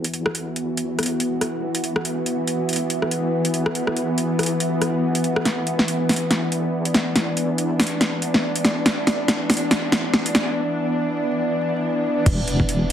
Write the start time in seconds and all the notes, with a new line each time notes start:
Already playing: E2 E3 B3 F#4
0.04 closed hi-hat
0.14 closed hi-hat
0.26 cross-stick
0.35 closed hi-hat
0.56 closed hi-hat
0.77 closed hi-hat
0.99 cross-stick, closed hi-hat
1.03 closed hi-hat
1.06 closed hi-hat
1.20 E1, closed hi-hat
1.41 cross-stick, closed hi-hat
1.75 closed hi-hat
1.84 E1, closed hi-hat
1.96 cross-stick
2.05 E1, closed hi-hat
2.26 closed hi-hat
2.47 closed hi-hat
2.69 closed hi-hat
2.73 closed hi-hat
2.76 closed hi-hat
2.90 closed hi-hat
3.02 cross-stick
3.11 closed hi-hat
3.33 E2
3.45 closed hi-hat
3.54 closed hi-hat
3.66 cross-stick
3.75 closed hi-hat
3.87 cross-stick
3.97 closed hi-hat
4.18 closed hi-hat
4.39 cross-stick, closed hi-hat
4.43 closed hi-hat
4.46 closed hi-hat
4.60 G1, closed hi-hat
4.82 cross-stick, closed hi-hat
5.15 closed hi-hat
5.24 closed hi-hat
5.36 cross-stick
5.45 E1 D4, snare, closed hi-hat
5.67 closed hi-hat
5.79 snare
5.88 closed hi-hat
6.09 snare, open hi-hat
6.13 closed hi-hat
6.16 closed hi-hat
6.31 snare, closed hi-hat
6.52 closed hi-hat
6.73 E2
6.85 closed hi-hat
6.94 snare, closed hi-hat
7.16 snare, closed hi-hat
7.37 closed hi-hat
7.58 closed hi-hat
7.80 snare, open hi-hat
7.84 closed hi-hat
7.87 closed hi-hat
8.01 E1, snare, closed hi-hat
8.22 closed hi-hat
8.34 snare
8.45 D#1
8.56 closed hi-hat
8.65 E1, snare, closed hi-hat
8.86 E1, snare, closed hi-hat
9.07 snare, closed hi-hat
9.28 snare, closed hi-hat
9.50 snare, open hi-hat
9.54 closed hi-hat
9.57 closed hi-hat
9.71 snare, closed hi-hat
9.92 snare, closed hi-hat
10.13 E2, snare
10.26 closed hi-hat
10.35 snare, closed hi-hat
12.26 E1 E3 B3 F#4, kick, closed hi-hat, crash
12.48 closed hi-hat
12.60 kick
12.69 closed hi-hat